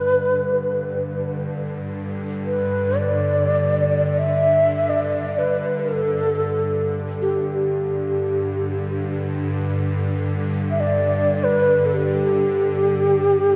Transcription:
Already playing: G2 D3 B4
0.43 G2 D3
2.45 B4
2.97 D5
4.18 E5
4.89 D5
5.39 B4
5.80 A4
7.22 G4
10.71 E5
10.80 D5
11.44 B4
11.86 A4
11.94 G4

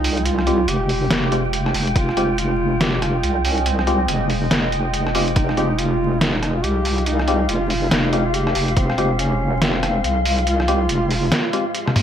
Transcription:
Already playing: C2 G#3 D#4 F4 G5
0.04 open hi-hat
0.17 closed hi-hat
0.26 F4, closed hi-hat
0.39 cross-stick
0.47 G#3 C4 F4 G4, closed hi-hat
0.68 F1 G4, closed hi-hat
0.89 open hi-hat
1.11 F1, snare, closed hi-hat
1.32 G#3 C4 F4 G4, closed hi-hat
1.53 closed hi-hat
1.66 cross-stick
1.74 F1, open hi-hat
1.87 closed hi-hat
1.96 F1 F4 D#5, kick, closed hi-hat
2.09 cross-stick
2.17 G#3 C4 F4 G4, closed hi-hat
2.38 F4, closed hi-hat
2.81 G4, snare, closed hi-hat
3.02 F4, cross-stick, closed hi-hat
3.23 C2, closed hi-hat
3.45 C#4, open hi-hat
3.58 closed hi-hat
3.66 C4, closed hi-hat
3.79 cross-stick
3.87 G#3 C4 F4 G4, closed hi-hat
4.08 F1, closed hi-hat
4.30 open hi-hat
4.51 F1, snare, closed hi-hat
4.72 closed hi-hat
4.94 closed hi-hat
5.07 cross-stick
5.15 G#3 C4 F4 G4, open hi-hat
5.28 closed hi-hat
5.36 F1 D#4 F5 G5, kick, closed hi-hat
5.49 cross-stick
5.57 G#3 C4 F4 G4, closed hi-hat
5.79 F4, closed hi-hat
6.21 D#4, snare, closed hi-hat
6.43 cross-stick, closed hi-hat
6.55 F4
6.64 C2 G4, closed hi-hat
6.85 open hi-hat
6.98 closed hi-hat
7.06 D#4, closed hi-hat
7.19 cross-stick
7.28 G#3 C4 F4 G4, closed hi-hat
7.49 F1 F4, closed hi-hat
7.70 open hi-hat
7.91 F1 D#4, snare, closed hi-hat
8.13 G#3 C4 F4 G4, closed hi-hat
8.26 F4
8.34 G4, closed hi-hat
8.47 cross-stick
8.55 F1, open hi-hat
8.68 closed hi-hat
8.76 F1 C4 C6, kick, closed hi-hat
8.90 cross-stick
8.98 G#3 C4 F4 G4, closed hi-hat
9.19 C#4, closed hi-hat
9.62 C4, snare, closed hi-hat
9.83 cross-stick, closed hi-hat
10.04 C2, closed hi-hat
10.25 open hi-hat
10.39 closed hi-hat
10.47 F4, closed hi-hat
10.60 cross-stick
10.68 G#3 C4 F4 G4, closed hi-hat
10.89 F1, closed hi-hat
11.11 open hi-hat
11.32 snare, closed hi-hat
11.53 G#3 C4 F4 G4, closed hi-hat
11.75 closed hi-hat
11.88 cross-stick, high tom
11.96 open hi-hat, mid tom

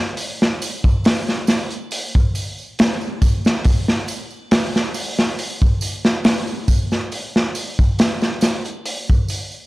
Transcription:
0.17 open hi-hat, tambourine
0.42 snare
0.62 open hi-hat, tambourine, triangle
0.84 kick, tambourine
1.04 snare, open hi-hat, tambourine
1.28 snare, tambourine
1.47 snare, open hi-hat, tambourine, triangle
1.70 closed hi-hat, tambourine
1.91 open hi-hat, tambourine
2.15 kick, tambourine
2.35 open hi-hat, tambourine
2.59 tambourine
2.79 snare, open hi-hat, tambourine
3.01 tambourine
3.22 kick, open hi-hat, tambourine
3.45 snare, tambourine
3.64 kick, open hi-hat, tambourine
3.88 snare
4.08 open hi-hat, tambourine, triangle
4.30 tambourine
4.51 snare, open hi-hat, tambourine
4.75 snare, tambourine
4.94 open hi-hat, tambourine, triangle
5.18 snare, tambourine
5.39 open hi-hat, tambourine
5.61 kick, tambourine
5.81 open hi-hat, tambourine
6.04 snare, tambourine
6.24 snare, open hi-hat, tambourine
6.47 tambourine
6.68 kick, open hi-hat, tambourine
6.91 snare, tambourine
7.12 open hi-hat, tambourine
7.36 snare
7.55 open hi-hat, tambourine, triangle
7.79 kick, tambourine
7.98 snare, open hi-hat, tambourine
8.22 snare, tambourine
8.41 snare, open hi-hat, tambourine, triangle
8.65 closed hi-hat, tambourine
8.86 open hi-hat, tambourine
9.10 kick, tambourine
9.28 open hi-hat, tambourine
9.52 tambourine

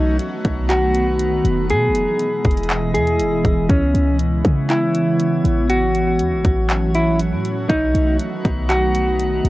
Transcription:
Already playing: B1 D#3 F#3 A3 B3 D#4 F#4 B4
0.19 closed hi-hat
0.45 B1, kick, closed hi-hat
0.69 F#4, clap, closed hi-hat
0.95 closed hi-hat
1.19 closed hi-hat
1.45 E1, closed hi-hat
1.69 B2 E3 G#3 E4 G#4 D#5, closed hi-hat
1.88 E1
1.95 closed hi-hat
2.19 closed hi-hat
2.45 E1, kick, closed hi-hat
2.51 closed hi-hat
2.57 closed hi-hat
2.63 closed hi-hat
2.70 clap, closed hi-hat
2.94 E2 G#4, closed hi-hat
3.07 closed hi-hat
3.19 E1, closed hi-hat
3.45 E1, kick, closed hi-hat
3.69 C#2 C#3 E3 B3 C#4 C#5, kick, closed hi-hat
3.94 C#2, closed hi-hat
4.19 closed hi-hat
4.45 C#3, kick, closed hi-hat
4.70 E4, clap, closed hi-hat
4.95 closed hi-hat
5.20 closed hi-hat
5.44 A1, closed hi-hat
5.69 F#3 A3 C#4 F#4, closed hi-hat
5.95 closed hi-hat
6.19 E2, closed hi-hat
6.32 A1
6.45 A1, kick, closed hi-hat
6.70 clap, closed hi-hat
6.95 E4, closed hi-hat
7.19 closed hi-hat
7.32 A2
7.45 closed hi-hat
7.69 B1 D#3 F#3 B3 D#4 B4, kick, closed hi-hat
7.95 B1, closed hi-hat
8.19 closed hi-hat
8.45 B1, kick, closed hi-hat
8.69 F#4, clap, closed hi-hat
8.95 closed hi-hat
9.20 closed hi-hat
9.45 E1, closed hi-hat

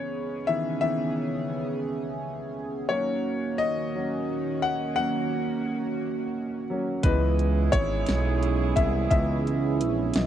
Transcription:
Already playing: C#3 E3 B3 C#4 D#4 G#4 B4 C#5
0.47 D#3 E3 B3 E5
0.81 D#3 E3 B3 E5
2.89 D#3 F#3 A#3 C#4 F#4 C#5
3.58 D#5
3.95 F#3 A#3 C#4
4.62 F#5
4.96 F#3 A#3 C#4 F#5
6.70 F#3 A#3 C#4
7.03 C#2 E3 G#3 B3 E4 G#4 B4 D#5, kick, closed hi-hat
7.39 closed hi-hat
7.72 G#1 C#5, kick, closed hi-hat
8.06 B1, snare, closed hi-hat
8.43 closed hi-hat
8.76 C2 E5, kick, closed hi-hat
9.11 C#2 E3 B3 D#5 E5, kick, closed hi-hat
9.47 closed hi-hat
9.81 A#1, closed hi-hat
10.14 B1 E3 B3 D#5, snare, closed hi-hat

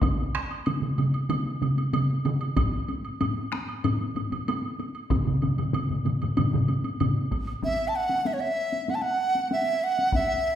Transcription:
0.02 taiko, taiko mid, taiko high, high woodblock
0.19 taiko high
0.35 taiko rim, high woodblock
0.50 taiko high, high woodblock
0.66 taiko mid, taiko high, high woodblock
0.82 taiko mid, taiko high
0.98 taiko mid, taiko high, high woodblock
1.14 taiko high, high woodblock
1.29 taiko mid, taiko high, high woodblock
1.46 taiko high
1.62 taiko mid, taiko high, high woodblock
1.77 taiko high, high woodblock
1.93 taiko mid, taiko high, high woodblock
2.10 taiko high
2.25 taiko mid, taiko high, high woodblock
2.41 taiko high, high woodblock
2.57 taiko, taiko low-mid, taiko high, high woodblock
2.73 taiko high
2.88 taiko high, high woodblock
3.05 taiko high, high woodblock
3.21 taiko low-mid, taiko high, high woodblock
3.37 taiko high
3.52 taiko rim, taiko high, high woodblock
3.68 taiko high, high woodblock
3.84 taiko low-mid, taiko high, high woodblock
4.01 taiko high
4.16 taiko low-mid, taiko high, high woodblock
4.32 taiko low-mid, taiko high, high woodblock
4.48 taiko high, high woodblock
4.65 taiko high
4.79 taiko high, high woodblock
4.95 taiko high, high woodblock
5.10 taiko, taiko low-mid, taiko mid, taiko high, high woodblock
5.27 taiko low-mid, taiko mid, taiko high
5.42 taiko low-mid, taiko mid, taiko high, high woodblock
5.58 taiko low-mid, taiko mid, taiko high, high woodblock
5.73 taiko low-mid, taiko mid, taiko high, high woodblock
5.90 taiko low-mid, taiko mid, taiko high
6.05 taiko low-mid, taiko mid, taiko high, high woodblock
6.22 taiko low-mid, taiko mid, taiko high, high woodblock
6.37 taiko low-mid, taiko mid, taiko high, high woodblock
6.53 taiko low-mid, taiko mid, taiko high
6.68 taiko high, high woodblock
6.84 taiko high, high woodblock
7.00 taiko low-mid, taiko mid, taiko high, high woodblock
7.16 taiko high
7.32 taiko, taiko high, high woodblock
7.47 high woodblock
7.62 E5, taiko, taiko high
7.88 A5
7.96 F#5
8.09 taiko high
8.25 E5, taiko high
8.33 C#5
8.40 E5
8.73 taiko high
8.88 F#5, taiko high
8.95 A5
9.02 F#5
9.35 taiko high
9.51 E5, taiko high
9.84 F#5
9.99 taiko high
10.12 E5, taiko, taiko high

